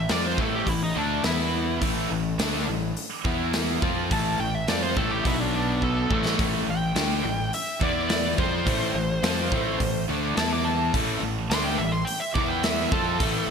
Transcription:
0.00 lead electric guitar E5
0.09 fingered electric bass F2, distorted electric guitar F3 C4 F4, lead electric guitar D5, snare, open hi-hat
0.27 lead electric guitar C5
0.37 fingered electric bass A1, distorted electric guitar A2 E3 A3, lead electric guitar A4, kick
0.55 lead electric guitar G4
0.66 fingered electric bass A1, distorted electric guitar A2 E3, lead electric guitar E4, kick, open hi-hat
0.83 lead electric guitar D#4
0.95 fingered electric bass D2, distorted electric guitar D3 A3 D4, lead electric guitar D4
1.24 fingered electric bass E2, distorted electric guitar E3 B3 E4, lead electric guitar E4, snare, open hi-hat
1.81 fingered electric bass A1, distorted electric guitar A2 E3 A3, kick, open hi-hat
2.10 fingered electric bass A1, distorted electric guitar A2 E3
2.38 fingered electric bass D2, distorted electric guitar D3 A3 D4, snare, open hi-hat
2.67 fingered electric bass A1, distorted electric guitar A2 E3
2.97 open hi-hat
3.25 fingered electric bass E2, distorted electric guitar E3 B3 E4, kick
3.53 snare, open hi-hat
3.81 fingered electric bass F2, distorted electric guitar F3 C4 F4, kick
4.10 fingered electric bass A1, distorted electric guitar A2 E3 A3, lead electric guitar A5, kick, open hi-hat
4.39 fingered electric bass A1, distorted electric guitar A2 E3, lead electric guitar G5
4.55 lead electric guitar E5
4.67 fingered electric bass F2, distorted electric guitar F3 C4 F4, lead electric guitar D5, snare, open hi-hat
4.82 lead electric guitar C5
4.96 fingered electric bass A1, distorted electric guitar A2 E3 A3, lead electric guitar A4, kick
5.11 lead electric guitar G4
5.24 fingered electric bass B1, distorted electric guitar B2 F#3 B3, lead electric guitar E4, kick, open hi-hat
5.40 lead electric guitar D4
5.55 lead electric guitar D4
5.82 lead electric guitar A4, kick
6.10 fingered electric bass A1, distorted electric guitar A2 E3 A3, kick
6.25 snare
6.38 fingered electric bass A1, distorted electric guitar A2 E3 A3, kick, open hi-hat
6.67 fingered electric bass A1, distorted electric guitar A2 E3, lead electric guitar G5
6.95 fingered electric bass D2, distorted electric guitar D3 A3 D4, snare, open hi-hat
7.23 fingered electric bass A1, distorted electric guitar A2 E3
7.53 lead electric guitar E5, open hi-hat
7.80 fingered electric bass E2, distorted electric guitar E3 B3 E4, lead electric guitar D5, kick
8.09 lead electric guitar D5, snare, open hi-hat
8.37 fingered electric bass F2, distorted electric guitar F3 C4 F4, lead electric guitar C5, kick
8.65 fingered electric bass A1, distorted electric guitar A2 E3 A3, kick, open hi-hat
8.94 fingered electric bass A1, distorted electric guitar A2 E3
9.23 fingered electric bass F2, distorted electric guitar F3 C4 F4, snare, open hi-hat
9.51 fingered electric bass A1, distorted electric guitar A2 E3 A3, kick
9.80 fingered electric bass A1, distorted electric guitar A2 E3, kick, open hi-hat
10.08 fingered electric bass D2, distorted electric guitar D3 A3 D4
10.37 fingered electric bass E2, distorted electric guitar E3 B3 E4, lead electric guitar A5, snare, open hi-hat
10.53 lead electric guitar D6
10.65 lead electric guitar A5
10.94 fingered electric bass A1, distorted electric guitar A2 E3 A3, kick, open hi-hat
11.21 fingered electric bass A1, distorted electric guitar A2 E3
11.49 fingered electric bass D2, distorted electric guitar D3 A3 D4, lead electric guitar C6, snare, open hi-hat
11.64 lead electric guitar G5
11.78 fingered electric bass A1, distorted electric guitar A2 E3, lead electric guitar E5
11.92 lead electric guitar C6
12.05 lead electric guitar G5, open hi-hat
12.20 lead electric guitar E5
12.34 fingered electric bass E2, distorted electric guitar E3 B3 E4, lead electric guitar D6, kick
12.49 lead electric guitar G5
12.63 lead electric guitar E5, snare, open hi-hat
12.91 fingered electric bass F2, distorted electric guitar F3 C4 F4, lead electric guitar A4, kick
13.19 fingered electric bass A1, distorted electric guitar A2 E3 A3, kick, open hi-hat

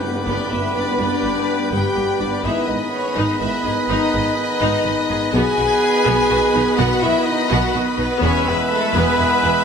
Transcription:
Already playing: trombone section G3 B3, pipe organ B3 B4 D5 G5, viola section B4, trumpet B4, violin section B4 B5
0.03 french horn section B3, violin section B4
0.27 double bass section G1, cello section G2, viola section B3, french horn section D4, violin section D5
0.51 double bass section G1, cello section G2, french horn section E4, viola section G4, violin section E5
0.75 double bass section G1, cello section G2, viola section D4, french horn section D4, violin section D5
0.99 double bass section G1, cello section G2, viola section B3, french horn section D4, violin section D5
1.22 double bass section G1, cello section G2, viola section G4
1.71 double bass section G1, cello section G2, viola section B3, french horn section G4, violin section G5
1.96 double bass section G1, cello section G2, viola section G4
2.20 double bass section G1, cello section G2, viola section D4, french horn section D4, violin section D5
2.43 double bass section G#1, cello section G#2, trombone section D#3 B3, viola section D#4 B4, french horn section E4, pipe organ G#4 B4 D#5, trumpet B4, violin section D#5 E5 B5
2.67 double bass section G#1, cello section G#2, french horn section D#4, viola section B4, violin section D#5
2.91 french horn section C#4, violin section C#5
3.16 double bass section G#1, cello section G#2, viola section D#4, french horn section D#4, violin section D#5
3.40 double bass section G#1, cello section G#2, french horn section E4, viola section B4, violin section E5
3.63 double bass section G#1, cello section G#2, french horn section D#4, viola section G#4, violin section D#5
3.89 double bass section G#1, cello section G#2, viola section D#4, french horn section D#4, violin section D#5
4.13 double bass section G#1, cello section G#2, viola section B4
4.37 french horn section D#4, violin section D#5
4.61 double bass section G#1, cello section G#2, viola section D#4
4.85 double bass section G#1, cello section G#2, viola section B4
5.09 double bass section G#1, cello section G#2, viola section G#4
5.33 double bass section B1, cello section B2, trombone section D#3 B3, viola section B3 B4, pipe organ B3 F#4, french horn section G#4, trumpet B4, violin section D#5 G#5 B5
5.58 double bass section B1, cello section B2, viola section F#4
6.06 double bass section B1, cello section B2, viola section B3
6.30 double bass section B1, cello section B2, viola section F#4
6.54 double bass section B1, cello section B2, viola section D#4
6.78 double bass section B1, cello section B2, viola section B3, french horn section F#4, violin section F#5
7.01 double bass section B1, cello section B2, french horn section E4, viola section F#4, violin section E5
7.26 french horn section D#4, violin section D#5
7.50 double bass section B1, cello section B2, viola section B3, french horn section F#4, violin section F#5
7.74 double bass section B1, cello section B2, viola section F#4
7.98 double bass section B1, cello section B2, french horn section B3, viola section D#4, violin section B4
8.21 double bass section E1, cello section E2, trombone section E3 G#3, viola section B3 B4, french horn section C#4, pipe organ G#4 B4 E5, trumpet B4, violin section C#5 E5 B5
8.46 double bass section E1, cello section E2, french horn section B3, viola section G#4, violin section B4
8.71 french horn section A3, violin section A4
8.94 double bass section E1, cello section E2, viola section B3, french horn section B3, violin section B4
9.18 double bass section E1, cello section E2, viola section G#4
9.43 double bass section E1, cello section E2, viola section E4

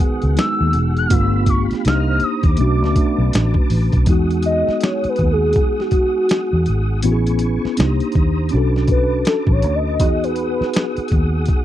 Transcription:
Already playing: trombone section D#3 B3 G#4, tine electric piano G#3 B3 D#4 F#4, tonewheel organ G#4 F#5, soft synth lead D#6
0.22 fingered electric bass C#2, closed hi-hat
0.35 tine electric piano G#3 B3 D#4 G#4, snare, closed hi-hat
0.39 soft synth lead E6
0.61 fingered electric bass D#2
0.73 fingered electric bass E1, closed hi-hat
0.97 soft synth lead F#6, closed hi-hat
1.07 trombone section D3 F4, tine electric piano A3 B3, soft synth lead F6, closed hi-hat
1.11 fingered electric bass G1, trombone section B3, tine electric piano D4 F4, tonewheel organ G4 F5 B5, soft synth lead E6, kick
1.46 soft synth lead C#6, kick, closed hi-hat
1.71 muted fingered electric bass stroke, snare, closed hi-hat
1.84 fingered electric bass C2, trombone section C3 A#3 D#4, tine electric piano A#3 D4 D#4 G4, tonewheel organ C5 A#5 D#6, soft synth lead F6, snare, closed hi-hat
2.20 soft synth lead D#6, closed hi-hat
2.43 fingered electric bass D#2, soft synth lead D6, kick, closed hi-hat
2.57 fingered electric bass B1, trombone section B2 A3 D4, tine electric piano A3 C#4, tonewheel organ B4 A5, closed hi-hat
2.61 tine electric piano D4 F#4, tonewheel organ D6
2.82 fingered electric bass C#2, snare
2.96 kick, closed hi-hat
3.18 fingered electric bass B1
3.33 fingered electric bass A1, snare, closed hi-hat
3.54 kick
3.70 fingered electric bass A1, open hi-hat
3.92 fingered electric bass B1, kick, closed hi-hat
4.06 fingered electric bass E2, tine electric piano G#3 B3 D#4, tonewheel organ G#4 F#5 D#6, kick, closed hi-hat
4.11 tine electric piano F#4
4.31 closed hi-hat
4.43 soft synth lead D#5, closed hi-hat
4.68 muted fingered electric bass stroke, snare
4.81 soft synth lead C#5, snare, closed hi-hat
5.04 muted fingered electric bass stroke, closed hi-hat
5.09 soft synth lead B4
5.16 kick, closed hi-hat
5.20 fingered electric bass D#2
5.32 soft synth lead G#4
5.53 kick, closed hi-hat
5.80 soft synth lead F#4, snare
5.91 kick, closed hi-hat
6.29 snare, closed hi-hat
6.53 fingered electric bass E2
6.66 fingered electric bass G#1, closed hi-hat
7.02 fingered electric bass A1, tine electric piano B3 C#4 E4 F#4, tonewheel organ B4 G#5 C#6, closed hi-hat
7.12 tine electric piano G#4
7.27 closed hi-hat
7.39 closed hi-hat
7.65 muted fingered electric bass stroke, snare
7.77 fingered electric bass C2, tine electric piano A#3 D4 D#4 F4, tonewheel organ C5 A#5 D#6, snare, closed hi-hat
7.87 tine electric piano G4
8.00 closed hi-hat
8.12 fingered electric bass D#2, kick, closed hi-hat
8.49 tine electric piano C#4, tonewheel organ B4 A5 D6, closed hi-hat
8.53 fingered electric bass B1, tine electric piano D4 F#4 A4
8.76 snare
8.87 soft synth lead B4, kick, closed hi-hat
9.25 soft synth lead A4, snare, closed hi-hat
9.47 fingered electric bass A1, kick
9.52 soft synth lead C#5
9.62 fingered electric bass D2, closed hi-hat
9.75 soft synth lead D#5
9.99 fingered electric bass E2, tine electric piano B3 D#4 F#4, tonewheel organ G#4 F#5 D#6, kick, closed hi-hat
10.04 tine electric piano G#4
10.24 soft synth lead B4, closed hi-hat
10.36 closed hi-hat
10.61 muted fingered electric bass stroke, snare
10.74 snare, closed hi-hat
10.97 muted fingered electric bass stroke, closed hi-hat
11.08 kick, closed hi-hat
11.13 fingered electric bass D#2
11.46 kick, closed hi-hat

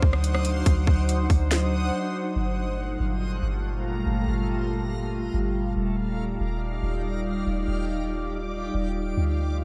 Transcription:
Already playing: ambient pad F#3 D4 D#4 C5, synth texture C5 F#5 D#6
0.02 808-style bass D2, kick
0.13 cross-stick
0.24 closed hi-hat
0.34 cross-stick
0.45 closed hi-hat
0.66 808-style bass D2, kick, closed hi-hat
0.87 808-style bass D2, kick
1.09 closed hi-hat
1.30 808-style bass D2, kick, open hi-hat
1.51 snare, closed hi-hat
2.36 808-style bass G1, ambient pad A#2 G3 A3 F4, synth texture A3 F5 A#5
3.00 808-style bass G1
3.43 808-style bass G1
4.07 808-style bass G1
4.28 808-style bass G1
5.34 808-style bass G1
5.76 808-style bass D#1, ambient pad D#4 F4 D5, synth texture G4 D6
6.40 808-style bass D#1
6.83 808-style bass D#1
7.47 808-style bass D#1
7.68 808-style bass D#1
8.74 808-style bass D#1
9.17 808-style bass D2, ambient pad A3 D4 C5, synth texture C5 F5

